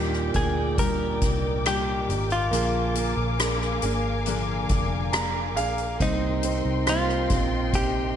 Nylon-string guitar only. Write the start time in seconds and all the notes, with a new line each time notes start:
Already playing: G3 A#3 D4 G4
0.36 A#3 D4
0.78 G3 A#3 D4 G4
1.64 G3 A#3 D4 G4
2.09 A#3 D4 G4
2.52 A#2 D3 F3 A#3 D4 G#4
3.39 F3 A#3 D4 G#4
3.82 F3 A#3 D4 G#4
4.26 A#2 D3 F3 A#3 D4 G#4
5.13 F3 A#3 D4 G#4
5.56 F3 A#3 D4 G#4
6.00 C3 G3 A#3 D#4 G4
6.87 G3 A#3 D#4 G4
7.30 A#3 D#4 G4
7.74 C3 A#3 D#4